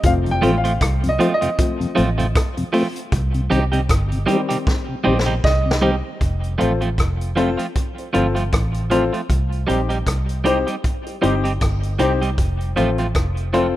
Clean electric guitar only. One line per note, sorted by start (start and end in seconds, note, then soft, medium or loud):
0.42 0.55 F3 medium
0.42 0.55 A3 medium
0.42 0.55 C4 loud
0.42 0.56 F4 loud
0.64 0.72 F3 soft
0.64 0.72 A3 medium
0.64 0.72 C4 medium
0.64 0.72 F4 medium
1.19 1.32 F3 loud
1.19 1.32 A3 medium
1.19 1.33 C4 loud
1.19 1.33 F4 medium
1.41 1.49 F3 soft
1.41 1.49 A3 soft
1.41 1.49 C4 medium
1.41 1.49 F4 medium
1.95 2.09 F3 medium
1.95 2.09 A3 medium
1.95 2.09 C4 medium
1.95 2.09 F4 loud
2.18 2.26 F3 medium
2.18 2.26 A3 medium
2.18 2.26 C4 medium
2.18 2.26 F4 medium
2.73 2.86 F3 medium
2.73 2.86 A3 medium
2.73 2.86 C4 medium
2.73 2.86 F4 medium
3.50 3.63 G3 medium
3.50 3.63 C4 medium
3.50 3.64 D#4 medium
3.50 3.64 G4 medium
3.72 3.80 G3 medium
3.72 3.80 C4 medium
3.72 3.80 D#4 medium
3.72 3.80 G4 medium
4.26 4.40 G3 medium
4.26 4.40 C4 medium
4.26 4.40 D#4 medium
4.26 4.40 G4 medium
4.49 4.57 G3 medium
4.49 4.57 C4 medium
4.49 4.57 D#4 medium
4.49 4.57 G4 medium
5.04 5.17 G3 medium
5.04 5.17 C4 loud
5.04 5.17 D#4 medium
5.04 5.17 G4 medium
5.26 5.35 G3 medium
5.26 5.34 C4 medium
5.26 5.34 D#4 medium
5.26 5.34 G4 medium
5.82 5.94 G3 medium
5.82 5.95 C4 medium
5.82 5.95 D#4 medium
5.82 5.95 G4 medium
6.58 6.71 F3 medium
6.58 6.71 A3 medium
6.58 6.72 C4 medium
6.58 6.72 F4 medium
6.81 6.89 F3 soft
6.81 6.89 A3 soft
6.81 6.89 C4 medium
6.81 6.88 F4 soft
7.36 7.49 F3 medium
7.36 7.49 A3 medium
7.36 7.49 C4 medium
7.36 7.49 F4 medium
7.57 7.66 F3 soft
7.57 7.66 A3 soft
7.57 7.66 C4 medium
7.57 7.65 F4 medium
8.13 8.26 F3 medium
8.13 8.26 A3 medium
8.13 8.26 C4 medium
8.13 8.26 F4 medium
8.35 8.43 F3 soft
8.35 8.43 A3 soft
8.35 8.43 C4 medium
8.35 8.43 F4 medium
8.90 9.03 F3 medium
8.90 9.04 A3 medium
8.90 9.04 C4 medium
8.90 9.04 F4 medium
9.13 9.21 F3 soft
9.13 9.21 A3 medium
9.13 9.20 C4 medium
9.13 9.20 F4 medium
9.67 9.80 G3 medium
9.67 9.80 C4 medium
9.67 9.80 D#4 medium
9.67 9.81 G4 medium
9.89 9.98 G3 medium
9.89 9.97 C4 medium
9.89 9.97 D#4 medium
9.89 9.97 G4 medium
10.44 10.57 G3 medium
10.44 10.58 C4 medium
10.44 10.58 D#4 medium
10.44 10.58 G4 medium
10.67 10.75 G3 soft
10.67 10.75 C4 soft
10.67 10.75 D#4 soft
10.67 10.74 G4 medium
11.22 11.35 G3 medium
11.22 11.35 C4 medium
11.22 11.35 D#4 medium
11.22 11.35 G4 medium
11.44 11.52 G3 medium
11.44 11.52 C4 medium
11.44 11.52 D#4 medium
11.44 11.51 G4 medium
11.99 12.12 G3 medium
11.99 12.12 C4 medium
11.99 12.12 D#4 medium
11.99 12.12 G4 medium
12.21 12.29 G3 soft
12.21 12.29 C4 soft
12.21 12.29 D#4 medium
12.21 12.29 G4 medium
12.76 12.89 F3 medium
12.76 12.89 A3 medium
12.76 12.89 C4 medium
12.76 12.90 F4 medium
12.99 13.07 F3 soft
12.99 13.06 A3 soft
12.99 13.06 C4 medium
12.99 13.06 F4 medium
13.53 13.66 F3 medium
13.53 13.66 A3 medium
13.53 13.66 C4 medium
13.53 13.67 F4 medium